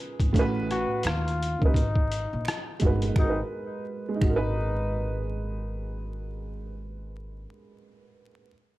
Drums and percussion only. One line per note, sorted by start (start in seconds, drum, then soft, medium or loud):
0.20 kick medium
0.20 closed hi-hat medium
0.34 kick loud
0.34 closed hi-hat medium
0.71 cross-stick soft
0.71 closed hi-hat medium
1.03 finger snap medium
1.03 cross-stick loud
1.03 closed hi-hat medium
1.28 closed hi-hat soft
1.43 closed hi-hat medium
1.62 kick medium
1.74 kick medium
1.74 closed hi-hat medium
1.96 kick medium
2.12 closed hi-hat medium
2.45 finger snap medium
2.45 cross-stick loud
2.45 closed hi-hat medium
2.80 kick loud
2.80 closed hi-hat medium
3.02 closed hi-hat medium
3.16 finger snap medium
3.16 kick loud
4.21 finger snap medium
4.21 kick loud